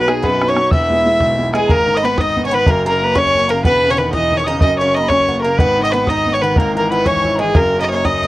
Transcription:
Already playing: B1
0.01 B4
0.07 F#3 G#3 B3 D#4 G#4 G#5, bodhran
0.22 F#2 B3 B4 B5, bodhran
0.42 F#3 B3 D#4, bodhran
0.48 C#4 C#5 C#6
0.56 F#3 B3 D#4, bodhran
0.71 E1 E2 E4 E5 E6, bodhran
0.90 G#3 B3 E4, bodhran
1.05 G#3 B3 E4
1.20 B1, bodhran
1.37 G#3 B3 E4
1.53 G#3 B3 E4 G#4 G#5, bodhran
1.68 G#1 G#2 A#3 A#4 A#5, bodhran
1.79 bodhran
1.87 D#3
1.95 D#4 D#5 D#6
2.02 B3 B4 B5
2.18 D#4 D#5 D#6, bodhran
2.27 bodhran
2.36 B3, bodhran
2.44 C#4 C#5 C#6
2.51 D#3 B3 B4 B5
2.66 F#1 F#2 A#3 A#4 A#5, bodhran
2.76 bodhran
2.85 C#3 A#3 A#5
2.89 A#4
3.01 A#3 B4
3.15 C#4 C#5 C#6, bodhran
3.25 C#4, bodhran
3.34 A#3, bodhran
3.39 C#4
3.48 C#3 A#3 A#4 A#5
3.64 E1 E2 B3 B4 B5, bodhran
3.74 bodhran
3.83 C#3
3.90 C#4 C#5 C#6
3.97 D#3 B3 B4 B5
4.13 E3 D#4 D#5 D#6, bodhran
4.22 bodhran
4.31 D#3, bodhran
4.37 C#4 C#5 C#6
4.44 C#3 D#4 D#5 D#6
4.59 F#1 F#2 D#4 D#5 D#6, bodhran
4.70 bodhran
4.78 C#3 C#4 C#5 C#6
4.94 A#3 D#4 D#5
5.02 B5
5.08 C#4 C#5 C#6, bodhran
5.20 bodhran
5.28 A#3 B3, bodhran
5.42 C#3 A#3 A#4 A#5
5.58 G#1 G#2 B3 B4 B5, bodhran
5.68 bodhran
5.78 D#3
5.83 D#4 D#5 D#6
5.91 B3 B4 B5
6.06 D#4 D#5 D#6, bodhran
6.17 bodhran
6.25 B3, bodhran
6.33 C#4 C#5 C#6
6.42 D#3 B3 B4 B5
6.56 G#1 G#2 A#3 A#4 A#5, bodhran
6.75 E3 A#3 A#4 A#5
6.90 B3 E4 B4 B5
7.06 E3 C#4 C#5 C#6, bodhran
7.15 bodhran
7.24 E4, bodhran
7.35 G#3 A#5
7.40 E3 G#4 G#5
7.55 F#1 F#2 A#3 A#4 A#5, bodhran
7.65 bodhran
7.73 C#3
7.80 D#4 D#5 D#6
7.89 A#3 C#5
8.04 C#4 D#4 D#5 D#6, bodhran
8.13 bodhran
8.22 A#3 D#4, bodhran

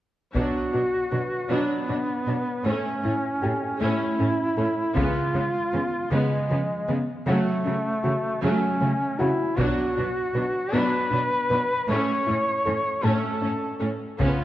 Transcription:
0.34 B2 F#3 B3 D4 F#4, taiko
0.73 B2 F#3 D4 F#4
1.11 B2 F#3 D4 B4
1.50 B2 F#3 B3 D4 C#5
1.88 B2 F#3 D4
2.27 B2 F#3 D4 B4
2.65 A2 A3 C#4
3.04 A2 A3 C#4 E4
3.42 A2 A3 C#4 G4 A4 G5
3.80 A2 A3 C#4 E4
4.19 A2 A3 C#4
4.57 A2 A3 C#4 A4
4.96 C#3 G#3 B3 F4, taiko
5.34 C#3 G#3 B3
5.73 C#3 G#3 B3
6.11 C#3 G#3 B3
6.50 C#3 F3 G#3 B3
6.88 C#3 G#3 B3
7.26 C#3 F#3 A3 F#5
7.65 C#3 F#3 A3 C#4
8.04 C#3 F#3 A3 F#4
8.42 C#3 F#3 A3 C#4
8.80 C#3 F#3 A3
9.19 C#3 F#3 A3 E4 F#4 F#5
9.58 B2 F#3 B3 D4 F#4, taiko
9.96 B2 F#3 D4 F#4
10.35 B2 F#3 D4 B4
10.73 B2 F#3 B3 D4 B4
11.11 B2 F#3 D4
11.50 B2 F#3 D4 B4
11.88 A2 A3 C#4 C#5
12.27 A2 A3 C#4 E4
12.65 A2 A3 C#4 A4
13.03 A2 A3 C#4 A4 A5
13.42 A2 A3 C#4
13.80 A2 A3 C#4 A4
14.19 C#3 B3 C#4 F4, taiko

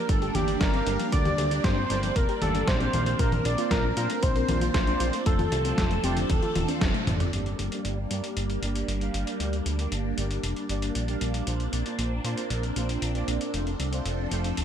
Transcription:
Already playing: G3 A#3 D4 A#4
0.09 G1 G3 A4, kick, closed hi-hat
0.22 G4, closed hi-hat
0.35 G1 A#3 D4 G4 D5, closed hi-hat, high conga
0.48 D4, closed hi-hat
0.61 G1 G2 A#4, kick, snare, closed hi-hat
0.74 A#3 C4 D4 G4 F5, closed hi-hat
0.87 G1 D4, closed hi-hat
1.00 F3, closed hi-hat
1.12 D2 G3 A#3 D4 G4 D5, kick, closed hi-hat
1.25 G4, closed hi-hat, high conga
1.38 D2 G4, closed hi-hat
1.51 A#3 D4 G4 D5, closed hi-hat
1.64 G1 G2 C5, kick, snare, closed hi-hat
1.77 C4
1.90 G1 A#3 D4 G4 D5, closed hi-hat
2.03 F3, closed hi-hat
2.16 F1 G3 A#4, kick, closed hi-hat
2.29 G4, closed hi-hat
2.42 G1 A#3 D4 G4 A4 D5, closed hi-hat, high conga
2.55 D4, closed hi-hat
2.68 A#1 G2 C5, kick, snare, closed hi-hat
2.80 A#3 C4 D4 G4 F5, closed hi-hat
2.93 A#1 D4, closed hi-hat, high conga
3.06 F3, closed hi-hat
3.19 A#1 A#3 C4 D4 F4 A#4 C5, kick, closed hi-hat
3.32 A#4, closed hi-hat, high conga
3.45 A#1 A#4 D5, closed hi-hat
3.58 A#3 D4 F4 C5, closed hi-hat
3.71 A#1 A#2 A#4, kick, snare, closed hi-hat
3.84 D4
3.97 A#2 A#3 D4 F4 A#4 C5, closed hi-hat
4.10 A3, closed hi-hat
4.23 A#1 A#3 C5, kick, closed hi-hat
4.36 A#4, closed hi-hat
4.48 A#1 A#3 D4 F4 A#4 C5, closed hi-hat, high conga
4.61 F4, closed hi-hat
4.74 A#1 A#2 C5, kick, snare, closed hi-hat
4.87 A#3 D4 F4 D5, closed hi-hat
5.00 A#1 F4, closed hi-hat
5.13 A3, closed hi-hat
5.26 F1 F3 A3 D4 F4 A4 C5, kick, closed hi-hat
5.39 F4, closed hi-hat, high conga
5.52 C2 F4, closed hi-hat
5.65 A3 C4 D4 F4 C5, closed hi-hat
5.78 F1 F2, kick, snare, closed hi-hat
5.91 A3, closed hi-hat
6.04 F1 A3 C4 D4 F4 G4 C5, closed hi-hat
6.17 D3, closed hi-hat
6.30 D1 F3 A4, kick, closed hi-hat, high conga
6.43 F4, closed hi-hat
6.55 D1 F4, closed hi-hat, high conga
6.68 A3 C4 D4 F4 C5, closed hi-hat
6.81 F1 F2, kick, snare, closed hi-hat
6.94 A3, closed hi-hat, high tom
7.07 F1 A3 C4 D4 F4 D5, closed hi-hat, mid tom, high conga
7.20 D3, closed hi-hat, mid tom
7.33 G1 G3 A#3 D4 G4 D5, closed hi-hat
7.46 closed hi-hat
7.59 G1, closed hi-hat
7.72 A#3 D4 G4 D5, closed hi-hat
7.85 G1, closed hi-hat
8.11 G2 A#3 D4 G4 D5, closed hi-hat
8.24 closed hi-hat
8.37 G1, closed hi-hat
8.50 closed hi-hat
8.62 G1 A#3 D4 G4 D5, closed hi-hat
8.75 closed hi-hat
8.88 G1, closed hi-hat
9.01 A#3 D4 G4 F5, closed hi-hat
9.14 G1, closed hi-hat
9.27 closed hi-hat
9.40 D2 A#3 D4 G4 D5, closed hi-hat
9.53 closed hi-hat
9.66 D2, closed hi-hat
9.79 A#3 D4 G4 D5, closed hi-hat
9.92 G1, closed hi-hat
10.18 G1 A#3 D4 G4 D5, closed hi-hat
10.31 closed hi-hat
10.43 F1, closed hi-hat
10.56 closed hi-hat
10.69 G1 A#3 D4 G4 D5, closed hi-hat
10.82 closed hi-hat
10.95 A#1, closed hi-hat
11.08 A#3 D4 G4 F5, closed hi-hat
11.21 A#1, closed hi-hat
11.34 closed hi-hat
11.47 A#1 A#3 C4 D4 F4 C5, closed hi-hat
11.60 closed hi-hat
11.73 A#1, closed hi-hat
11.86 A#3 D4 F4 C5, closed hi-hat
11.99 A#1, closed hi-hat
12.24 A#2 A#3 D4 F4 C5, closed hi-hat
12.38 closed hi-hat
12.50 A#1, closed hi-hat
12.63 closed hi-hat
12.76 A#1 A#3 D4 F4 C5, closed hi-hat
12.89 closed hi-hat
13.02 A#1, closed hi-hat
13.15 A#3 D4 F4 D5, closed hi-hat
13.28 A#1, closed hi-hat
13.41 closed hi-hat
13.54 F1 F3 A3 D4 F4 A4 C5, closed hi-hat
13.67 closed hi-hat
13.80 C2, closed hi-hat
13.93 A3 D4 F4 C5, closed hi-hat
14.06 F1, closed hi-hat
14.31 F1 A3 D4 F4 C5, closed hi-hat
14.44 closed hi-hat
14.57 D1, closed hi-hat

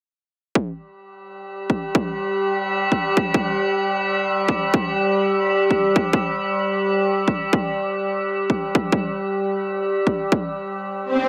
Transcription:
0.55 G3 G4, kick
1.70 kick
1.95 kick
2.92 kick
3.17 kick
3.34 kick
4.48 kick
4.74 kick
5.71 kick
5.96 kick
6.13 kick
7.28 kick
7.53 kick
8.50 kick
8.75 kick
8.92 kick
10.07 kick
10.32 kick
11.02 swell

